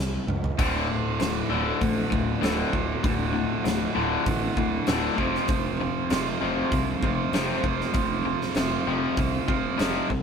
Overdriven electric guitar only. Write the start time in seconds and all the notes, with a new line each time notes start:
0.59 D2 A2 D3
0.90 D2 A2
1.20 D2 A2
1.50 D2 A2 D3
1.81 D2 A2
2.10 D2 A2
2.41 D2 A2 D3
2.73 D2 A2
3.03 D2 A2
3.33 D2 A2
3.64 D2 A2
3.95 D2 A2 D3
4.26 D2 A2
4.57 D2 A2
4.87 D2 A2 D3
5.18 F2 C3 F3
5.48 F2 C3
5.81 F2 C3
6.11 F2 C3
6.41 F2 C3 F3
6.73 F2 C3
7.04 F2 C3
7.34 F2 C3 F3
7.64 F2 C3
7.94 F2 C3
8.25 F2 C3
8.57 F2 C3
8.87 F2 C3 F3
9.18 F2 C3
9.48 F2 C3
9.78 F2 C3 F3
10.11 F2 C3